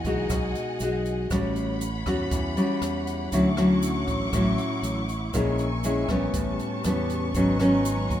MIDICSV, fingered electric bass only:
0, 0, Header, 1, 2, 480
1, 0, Start_track
1, 0, Tempo, 503356
1, 1248, Time_signature, 4, 2, 24, 8
1, 7820, End_track
2, 0, Start_track
2, 0, Title_t, "Fingered electric bass"
2, 0, Program_c, 0, 33
2, 44, Note_on_c, 0, 35, 74
2, 269, Note_off_c, 0, 35, 0
2, 283, Note_on_c, 0, 35, 91
2, 509, Note_off_c, 0, 35, 0
2, 766, Note_on_c, 0, 35, 84
2, 1214, Note_off_c, 0, 35, 0
2, 1244, Note_on_c, 0, 33, 97
2, 1929, Note_off_c, 0, 33, 0
2, 1966, Note_on_c, 0, 40, 86
2, 2191, Note_off_c, 0, 40, 0
2, 2208, Note_on_c, 0, 40, 90
2, 2431, Note_off_c, 0, 40, 0
2, 2684, Note_on_c, 0, 40, 85
2, 3133, Note_off_c, 0, 40, 0
2, 3171, Note_on_c, 0, 38, 102
2, 3852, Note_off_c, 0, 38, 0
2, 3885, Note_on_c, 0, 33, 77
2, 4110, Note_off_c, 0, 33, 0
2, 4126, Note_on_c, 0, 33, 88
2, 4351, Note_off_c, 0, 33, 0
2, 4604, Note_on_c, 0, 33, 88
2, 5053, Note_off_c, 0, 33, 0
2, 5090, Note_on_c, 0, 34, 96
2, 5772, Note_off_c, 0, 34, 0
2, 5804, Note_on_c, 0, 34, 75
2, 6030, Note_off_c, 0, 34, 0
2, 6044, Note_on_c, 0, 33, 95
2, 6270, Note_off_c, 0, 33, 0
2, 6533, Note_on_c, 0, 40, 94
2, 6978, Note_off_c, 0, 40, 0
2, 7002, Note_on_c, 0, 32, 90
2, 7688, Note_off_c, 0, 32, 0
2, 7724, Note_on_c, 0, 39, 80
2, 7820, Note_off_c, 0, 39, 0
2, 7820, End_track
0, 0, End_of_file